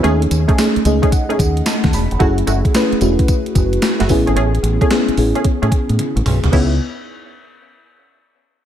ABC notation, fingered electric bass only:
X:1
M:4/4
L:1/16
Q:"Swing 16ths" 1/4=111
K:C#m
V:1 name="Fingered electric bass" clef=bass
D,,2 D,, z3 C,, z3 D,,2 z D,, E,,, ^E,,, | F,,,2 F,,, z3 E,,, z3 F,,,2 z F,,, A,,, G,,, | A,,,2 A,,, z3 A,,, z2 A,, z A,, z A,,, B,,, ^B,,, | C,,2 z12 z2 |]